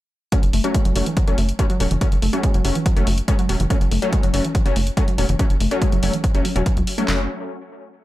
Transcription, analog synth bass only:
0.43 0.50 F#1 loud
0.53 0.61 F#1 medium
0.85 0.93 F#1 loud
0.96 1.03 F#1 medium
1.28 1.35 F#1 medium
1.38 1.53 F#1 medium
1.80 1.88 E1 medium
1.91 1.98 F#1 medium
2.12 2.19 F#1 loud
2.22 2.30 F#1 loud
2.54 2.62 F#1 medium
2.65 2.72 F#1 loud
2.97 3.04 F#1 medium
3.07 3.22 F#1 medium
3.49 3.57 E1 loud
3.60 3.67 F#1 medium
3.81 3.88 F#1 loud
3.91 3.99 F#1 medium
4.23 4.31 F#1 medium
4.34 4.41 F#1 medium
4.66 4.73 F#1 medium
4.76 4.91 F#1 medium
5.18 5.26 E1 medium
5.29 5.36 F#1 medium
5.50 5.57 F#1 loud
5.61 5.68 F#1 medium
5.92 6.00 F#1 loud
6.03 6.10 F#1 loud
6.35 6.42 F#1 medium
6.56 6.63 E1 medium
6.77 6.84 C#2 loud
7.08 7.28 F#1 loud

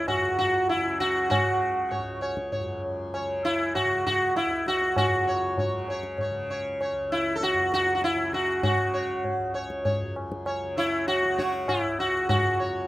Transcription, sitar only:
0.08 0.37 F#4 medium
0.39 0.69 F#4 medium
0.69 1.00 E4 medium
1.00 1.29 F#4 medium
1.30 2.18 F#4 medium
1.91 2.20 C#5 soft
2.21 2.50 C#5 soft
2.52 2.81 C#5 soft
3.14 3.43 C#5 soft
3.45 3.75 E4 medium
3.75 4.05 F#4 medium
4.07 4.36 F#4 medium
4.36 4.67 E4 medium
4.68 4.96 F#4 medium
4.98 5.85 F#4 medium
5.28 5.56 C#5 soft
5.59 5.87 C#5 soft
5.90 6.18 C#5 soft
6.21 6.49 C#5 soft
6.50 6.79 C#5 soft
6.81 7.10 C#5 soft
7.12 7.34 E4 medium
7.35 7.42 A4 medium
7.43 7.72 F#4 medium
7.74 7.94 F#4 medium
7.95 8.02 F#4 medium
8.04 8.32 E4 medium
8.34 8.62 F#4 medium
8.63 9.51 F#4 medium
8.94 9.22 C#5 soft
9.54 9.83 C#5 soft
9.85 10.14 C#5 soft
10.47 10.75 C#5 soft
10.77 11.07 E4 medium
10.77 11.05 C#5 soft
11.08 11.38 F#4 medium
11.38 11.70 F#4 medium
11.38 11.66 C#5 soft
11.69 11.99 E4 medium
12.00 12.28 F#4 medium
12.29 12.87 F#4 medium
12.60 12.87 C#5 soft

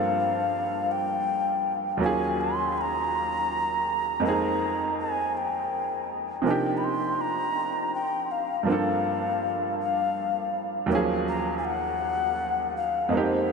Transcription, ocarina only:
0.00 0.93 F5 loud
0.91 1.75 G5 loud
2.03 2.42 G#5 loud
2.41 2.79 C6 loud
2.78 4.25 A#5 loud
2.78 2.82 B5 loud
4.25 4.94 A#5 loud
4.99 5.39 G#5 medium
5.37 6.10 G5 medium
6.47 6.52 G#5 medium
6.51 6.79 G5 loud
6.77 6.86 B5 medium
6.84 7.23 C6 loud
7.21 7.94 A#5 loud
7.95 8.33 G5 loud
8.31 8.68 F5 medium
8.69 9.75 F5 loud
8.69 8.73 F#5 medium
9.81 10.60 F5 loud
10.91 10.99 F5 loud
11.28 11.56 A#5 loud
11.58 11.66 G#5 medium
11.65 12.75 F#5 loud
12.77 13.15 F5 medium
13.14 13.52 C5 medium

